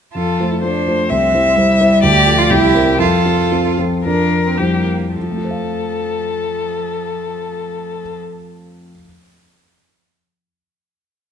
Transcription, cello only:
0.14 0.52 F4 medium
0.50 0.61 E4 medium
0.61 1.08 D4 medium
1.09 1.57 C4 medium
1.56 2.04 G3 medium
2.03 2.40 G4 loud
2.38 2.52 F4 medium
2.51 2.99 E4 loud
3.00 3.76 F4 medium
4.05 4.42 D4 medium
4.46 4.60 C4 medium
4.58 5.15 A#3 medium
5.15 8.19 F3 soft

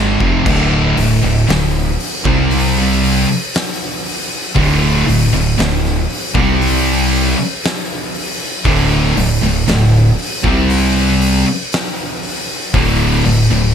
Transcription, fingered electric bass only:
0.00 0.17 G#1 medium
0.21 0.44 F1 medium
0.46 0.94 D1 loud
0.97 1.21 D1 medium
1.23 1.46 D1 medium
1.48 1.96 D1 medium
2.25 3.24 C2 loud
4.56 5.04 D1 loud
5.08 5.31 D1 medium
5.32 5.56 D1 medium
5.58 6.06 D1 medium
6.35 7.33 C2 medium
8.65 9.13 D1 loud
9.17 9.40 D1 medium
9.42 9.65 D1 medium
9.68 10.15 D1 medium
10.44 11.42 C2 loud
12.74 13.22 D1 medium
13.26 13.49 D1 medium
13.51 13.74 D1 medium

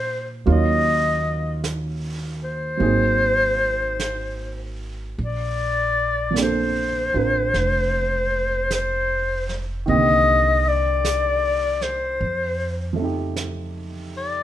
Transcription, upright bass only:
0.00 0.42 A#2 medium
0.47 2.77 D#2 medium
2.80 5.13 G#1 medium
5.18 7.11 A#1 medium
7.14 7.51 A1 medium
7.54 9.84 F1 medium
9.88 12.17 C2 medium
12.21 14.43 F2 medium

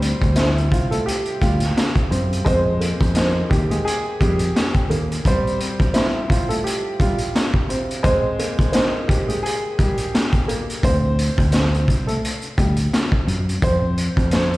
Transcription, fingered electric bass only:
0.00 0.12 D2 loud
0.22 0.72 D2 loud
0.72 1.00 C2 medium
1.42 1.70 D2 medium
2.11 2.40 F#2 medium
2.46 2.91 F2 loud
3.01 3.42 F2 medium
3.51 3.80 D#2 medium
4.21 4.49 F2 medium
4.90 5.19 D#2 medium
10.83 11.28 D2 loud
11.38 11.88 D2 medium
11.88 12.17 C2 medium
12.58 12.87 D2 medium
13.27 13.56 F#2 medium
13.62 14.07 F2 loud
14.17 14.57 F2 medium

